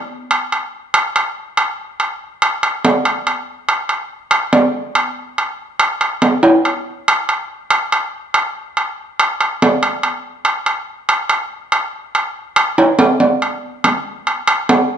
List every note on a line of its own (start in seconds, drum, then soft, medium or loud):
0.31 high timbale medium
0.52 high timbale medium
0.94 high timbale loud
1.16 high timbale medium
1.57 high timbale medium
2.00 high timbale medium
2.42 high timbale medium
2.63 high timbale medium
2.85 high timbale medium
2.85 low timbale medium
3.05 high timbale medium
3.27 high timbale medium
3.69 high timbale medium
3.89 high timbale medium
4.31 high timbale medium
4.53 high timbale medium
4.53 low timbale medium
4.95 high timbale medium
5.38 high timbale medium
5.80 high timbale medium
6.01 high timbale medium
6.22 high timbale medium
6.22 low timbale medium
6.43 high timbale medium
6.65 high timbale medium
7.08 high timbale medium
7.29 high timbale medium
7.70 high timbale medium
7.92 high timbale medium
8.34 high timbale medium
8.77 high timbale medium
9.20 high timbale medium
9.41 high timbale medium
9.62 high timbale medium
9.62 low timbale medium
9.83 high timbale medium
10.03 high timbale medium
10.45 high timbale medium
10.66 high timbale medium
11.09 high timbale medium
11.29 high timbale medium
11.72 high timbale medium
12.15 high timbale medium
12.56 high timbale loud
12.78 high timbale medium
12.99 low timbale loud
13.20 low timbale medium
13.42 high timbale medium
13.84 high timbale medium
13.84 low timbale medium
14.27 high timbale medium
14.48 high timbale medium
14.69 high timbale medium
14.69 low timbale medium